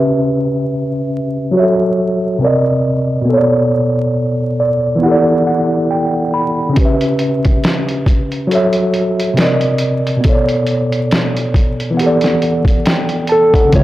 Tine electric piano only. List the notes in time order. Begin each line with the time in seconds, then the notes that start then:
Already playing: C#3 C#4 G4 B4 E5
1.51 F#3 F#4
1.55 G4 C#5 E5
1.62 A4
2.39 C3 C4 A#4
2.44 D5 D#5
3.22 B2 B3
3.29 A4
3.33 C#5 D5
4.60 D5
4.96 E3 B3
5.02 E4 G4 F#5
5.08 A4 D5
5.47 F#5
5.91 G5
6.34 B5
6.69 C#3
6.73 C#4 G4
6.81 B4 E5
8.47 F#3 F#4
8.51 A4 C#5 E5
9.34 C3 C4
9.38 A#4 D5
9.42 D#5
10.16 B2
10.21 B3
10.25 A4
10.29 C#5 D5
11.91 E3 B3
11.97 G4 F#5
12.04 A4 D5
12.86 G5
13.29 A5
13.54 F#5
13.65 C#3
13.69 C#4 G4
13.77 B4